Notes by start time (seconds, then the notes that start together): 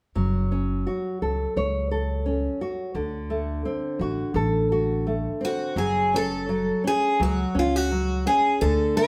0.15 F#1 F#3
0.52 C#4
0.87 F#4
1.22 C#2 A4
1.56 C#2 C#5
1.91 A4
2.26 C#4
2.61 F#4
2.94 D2 D3
3.30 A3
3.65 C4
3.99 A1 F#4
4.34 A1 A4
4.72 F#4
5.07 A3
5.41 C4
5.45 F#4
5.76 F#1 F#3 G#4
6.14 C#4 A4
6.49 F#3
6.84 C#4 G#4
7.20 C#2 F#3 F#4
7.55 C#2 C#4
7.59 F4
7.76 F#4
7.91 F#3
8.26 C#4 G#4
8.61 D2 D3 A4
8.97 A3 B4